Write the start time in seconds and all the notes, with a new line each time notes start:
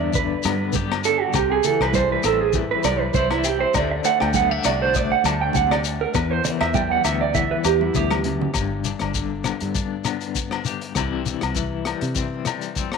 Already playing: E2 G2 D3 B3 D4 G4 D5
0.13 D3 B4, kick, muted conga, shekere
0.43 G2 B3, cross-stick, closed hi-hat, high conga, low agogo, shekere
0.73 G2 G4, kick, high conga, shekere
0.92 cross-stick, low agogo
1.04 D4 A4, closed hi-hat, shekere
1.21 F#4
1.34 C2 C3 G4, kick, cross-stick, muted conga, low agogo, shekere
1.51 G#4
1.63 E3 A4, closed hi-hat, muted conga, low conga, shekere
1.80 C2 B4, cross-stick, low agogo
1.93 G3 C5, kick, high conga, shekere
2.12 B4
2.23 A1 C4 A4, cross-stick, closed hi-hat, muted conga, low agogo, shekere
2.41 G#4
2.53 E3, muted clean electric guitar stroke, kick, muted conga, shekere
2.71 B4
2.84 C2 G3 D5, cross-stick, closed hi-hat, high conga, low agogo, shekere
3.01 B4
3.14 C2 E4 C5, kick, high conga, shekere
3.31 E4, cross-stick, low agogo
3.44 C4 G4, closed hi-hat, shekere
3.60 C5
3.74 D2 D3 A3 D4 D5, muted clean electric guitar stroke, kick, cross-stick, muted conga, low agogo, shekere
3.91 muted clean electric guitar stroke
4.04 A3 F#5, closed hi-hat, muted conga, shekere
4.20 D2 G5, cross-stick, low agogo
4.34 B3 F#5, kick, high conga, shekere
4.51 D4 E5
4.64 C2 F#4 D5, cross-stick, closed hi-hat, muted conga, low agogo, shekere
4.82 C5
4.94 A3 D5, kick, muted conga, shekere
5.12 F#5
5.24 D2 D4 A5, cross-stick, closed hi-hat, high conga, low agogo, shekere
5.41 G5
5.53 D2 C3 F#5, kick, high conga, shekere
5.71 D5, cross-stick, low agogo
5.84 muted clean electric guitar stroke, closed hi-hat, shekere
6.01 A#4
6.14 E2 B4, kick, cross-stick, muted conga, low agogo, shekere
6.31 C5
6.44 E3, muted clean electric guitar stroke, closed hi-hat, muted conga, low conga, shekere
6.61 E2 E5, cross-stick, low agogo
6.74 G3 G5, kick, high conga, shekere
6.92 F#5
7.05 D2 B3 E5, cross-stick, closed hi-hat, muted conga, low agogo, shekere
7.21 D5
7.34 E3 E5, kick, muted conga, low conga, shekere
7.51 B4
7.64 E2 G4, cross-stick, closed hi-hat, low agogo, shekere
7.81 E4, high conga
7.95 D2 E2 G4, kick, high conga, shekere
8.11 cross-stick, high conga, low agogo
8.24 F#2, closed hi-hat, low conga
8.41 low conga
8.54 G1 G2, kick, cross-stick, closed hi-hat, low agogo, shekere
8.84 D4, closed hi-hat, shekere
8.99 G1, cross-stick, closed hi-hat, low agogo
9.14 D3, kick, closed hi-hat, shekere
9.44 B3, cross-stick, closed hi-hat, low agogo, shekere
9.60 G2, closed hi-hat, shekere
9.75 D4, kick, closed hi-hat, shekere
10.05 B3, cross-stick, closed hi-hat, low agogo, shekere
10.21 closed hi-hat, shekere
10.35 kick, closed hi-hat, shekere
10.51 D4, cross-stick, low agogo
10.65 G4, closed hi-hat, shekere
10.81 closed hi-hat
10.95 C2 C3 E3 G3 C4 E4, kick, cross-stick, closed hi-hat, low agogo, shekere
11.25 closed hi-hat, shekere
11.41 C2, cross-stick, closed hi-hat, low agogo
11.55 E3, kick, closed hi-hat, shekere
11.85 G3, cross-stick, closed hi-hat, low agogo
12.01 C3, closed hi-hat, shekere
12.14 C4, kick, closed hi-hat, shekere
12.45 G3, cross-stick, closed hi-hat, low agogo, shekere
12.61 closed hi-hat, shekere
12.75 C4, kick, closed hi-hat, shekere
12.92 cross-stick, low agogo